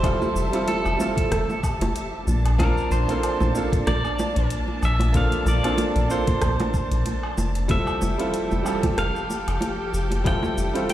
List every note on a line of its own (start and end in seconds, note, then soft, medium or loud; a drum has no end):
0.00 0.16 F1 medium
0.00 2.23 F3 medium
0.00 0.03 G3 medium
0.00 0.49 G3 loud
0.00 0.03 C4 medium
0.00 0.49 C4 medium
0.00 0.04 E4 medium
0.00 0.49 E4 medium
0.00 0.04 F4 medium
0.00 2.23 G4 medium
0.00 0.05 A4 medium
0.00 0.71 C5 medium
0.00 2.23 E5 medium
0.00 2.23 A5 medium
0.00 kick loud
0.00 closed hi-hat medium
0.00 cabasa soft
0.00 low woodblock medium
0.04 0.50 F4 medium
0.04 0.50 A4 loud
0.22 high bongo medium
0.22 cabasa soft
0.35 0.50 F1 loud
0.35 cabasa medium
0.52 0.63 G3 medium
0.52 0.64 C4 medium
0.52 0.64 E4 medium
0.52 0.64 F4 medium
0.52 0.64 A4 loud
0.52 closed hi-hat soft
0.52 cabasa soft
0.68 0.98 A4 medium
0.68 closed hi-hat medium
0.68 high bongo medium
0.68 cabasa soft
0.85 0.97 F1 medium
0.85 cabasa soft
0.85 low woodblock medium
0.97 2.24 G3 medium
0.97 2.25 C4 medium
0.97 2.25 E4 medium
0.97 2.26 F4 medium
0.97 1.60 A4 medium
0.97 high bongo medium
0.97 cabasa medium
1.02 2.27 A4 medium
1.17 kick loud
1.17 closed hi-hat soft
1.17 cabasa soft
1.31 1.46 F1 loud
1.31 kick medium
1.31 cross-stick medium
1.31 closed hi-hat medium
1.31 cabasa soft
1.50 high bongo medium
1.50 cabasa soft
1.63 kick loud
1.63 cabasa medium
1.63 low woodblock medium
1.81 1.93 F1 loud
1.81 closed hi-hat soft
1.81 high bongo medium
1.81 cabasa soft
1.96 closed hi-hat medium
1.96 cabasa soft
2.27 2.72 A#1 medium
2.27 7.66 A#3 medium
2.27 7.66 D4 medium
2.27 7.66 A5 medium
2.27 high bongo medium
2.27 cabasa medium
2.46 closed hi-hat soft
2.46 cabasa soft
2.46 low woodblock medium
2.58 3.04 A#3 loud
2.58 3.04 C4 medium
2.58 3.05 D4 medium
2.58 3.05 F4 medium
2.58 2.91 A#4 medium
2.58 3.05 A5 loud
2.58 kick loud
2.58 closed hi-hat soft
2.58 high bongo medium
2.58 cabasa soft
2.77 cabasa soft
2.91 3.06 A#1 medium
2.91 3.51 C5 loud
2.91 cabasa medium
3.08 3.19 A#3 medium
3.08 3.19 C4 medium
3.08 3.19 D4 medium
3.08 3.20 F4 medium
3.08 3.20 A4 medium
3.08 closed hi-hat soft
3.08 high bongo medium
3.08 cabasa soft
3.23 closed hi-hat soft
3.23 cabasa soft
3.23 low woodblock medium
3.40 3.52 A#1 medium
3.40 high bongo medium
3.40 cabasa soft
3.52 5.10 A#3 medium
3.52 5.11 C4 medium
3.52 5.11 D4 medium
3.52 5.12 F4 medium
3.52 cabasa medium
3.58 5.12 A4 medium
3.73 kick loud
3.73 closed hi-hat soft
3.73 cabasa soft
3.87 4.01 A#1 medium
3.87 4.47 D5 loud
3.87 cross-stick medium
3.87 closed hi-hat medium
3.87 high bongo soft
3.87 cabasa soft
4.05 cabasa soft
4.05 low woodblock medium
4.19 high bongo medium
4.19 cabasa medium
4.36 4.48 A#1 loud
4.36 closed hi-hat soft
4.36 cabasa soft
4.50 closed hi-hat medium
4.50 cabasa soft
4.68 high bongo soft
4.82 5.27 A#1 medium
4.82 5.16 E5 medium
4.82 cabasa medium
4.82 low woodblock medium
4.99 closed hi-hat soft
4.99 high bongo medium
4.99 cabasa soft
5.12 5.59 A#3 loud
5.12 5.59 C4 medium
5.12 5.60 D4 medium
5.12 5.60 F4 medium
5.12 5.60 A4 loud
5.12 kick loud
5.12 closed hi-hat medium
5.12 cabasa soft
5.17 5.48 F5 loud
5.32 closed hi-hat soft
5.32 cabasa soft
5.46 5.61 A#1 medium
5.46 6.07 D5 loud
5.46 high bongo medium
5.46 cabasa medium
5.62 5.74 A#3 medium
5.62 5.74 C4 medium
5.62 5.74 D4 medium
5.62 5.75 F4 medium
5.62 5.75 A4 medium
5.62 closed hi-hat soft
5.62 cabasa soft
5.62 low woodblock medium
5.78 closed hi-hat medium
5.78 high bongo medium
5.78 cabasa soft
5.96 6.08 A#1 medium
5.96 closed hi-hat soft
5.96 cabasa soft
6.07 7.65 A#3 medium
6.07 7.66 C4 medium
6.07 7.66 D4 medium
6.07 7.67 F4 medium
6.07 cabasa medium
6.11 7.67 A4 medium
6.11 7.34 C5 medium
6.27 kick loud
6.27 closed hi-hat soft
6.27 high bongo medium
6.27 cabasa soft
6.42 6.57 A#1 medium
6.42 kick medium
6.42 cross-stick medium
6.42 closed hi-hat medium
6.42 cabasa soft
6.42 low woodblock medium
6.60 closed hi-hat soft
6.60 high bongo medium
6.60 cabasa soft
6.74 kick loud
6.74 cabasa medium
6.91 7.03 A#1 loud
6.91 closed hi-hat soft
6.91 cabasa soft
7.06 closed hi-hat medium
7.06 high bongo soft
7.06 cabasa soft
7.23 low woodblock medium
7.38 7.82 F1 medium
7.38 high bongo medium
7.38 cabasa medium
7.55 closed hi-hat soft
7.55 cabasa soft
7.68 10.93 F3 medium
7.68 8.14 G3 loud
7.68 8.15 C4 medium
7.68 8.15 E4 medium
7.68 8.15 F4 medium
7.68 10.93 G4 medium
7.68 10.93 A4 medium
7.68 8.16 A4 loud
7.68 8.98 E5 medium
7.68 10.93 G5 medium
7.68 kick loud
7.68 closed hi-hat medium
7.68 high bongo medium
7.68 cabasa soft
7.87 cabasa soft
7.87 low woodblock medium
8.01 8.16 F1 loud
8.01 high bongo medium
8.01 cabasa medium
8.18 8.29 G3 medium
8.18 8.29 C4 medium
8.18 8.30 E4 medium
8.18 8.30 F4 medium
8.18 8.30 A4 medium
8.18 closed hi-hat soft
8.18 cabasa soft
8.34 closed hi-hat medium
8.34 cabasa soft
8.51 8.63 F1 medium
8.51 high bongo medium
8.51 cabasa soft
8.63 10.20 G3 medium
8.63 10.21 C4 medium
8.63 10.22 F4 medium
8.63 10.21 G4 medium
8.63 cabasa medium
8.63 low woodblock medium
8.68 10.23 A4 medium
8.83 kick loud
8.83 closed hi-hat soft
8.83 high bongo medium
8.83 cabasa soft
8.98 9.12 F1 medium
8.98 10.22 F5 medium
8.98 cross-stick medium
8.98 closed hi-hat medium
8.98 cabasa soft
9.16 cabasa soft
9.30 high bongo soft
9.30 cabasa medium
9.48 9.59 F1 loud
9.48 closed hi-hat soft
9.48 cabasa soft
9.48 low woodblock medium
9.61 closed hi-hat medium
9.61 high bongo medium
9.61 cabasa soft
9.93 10.38 F1 medium
9.93 cabasa medium
10.11 closed hi-hat soft
10.11 high bongo medium
10.11 cabasa soft
10.24 10.70 G3 medium
10.24 10.70 C4 medium
10.24 10.71 E4 medium
10.24 10.71 F4 medium
10.24 10.71 A4 loud
10.24 10.89 G5 loud
10.24 kick loud
10.24 closed hi-hat medium
10.24 cabasa soft
10.24 low woodblock medium
10.43 high bongo medium
10.43 cabasa soft
10.57 10.72 F1 loud
10.57 cabasa medium
10.73 10.84 G3 medium
10.73 10.85 C4 medium
10.73 10.85 E4 medium
10.73 10.85 F4 medium
10.73 10.86 A4 medium
10.73 closed hi-hat soft
10.73 cabasa soft
10.89 10.93 G5 loud
10.89 closed hi-hat medium
10.89 high bongo medium
10.89 cabasa soft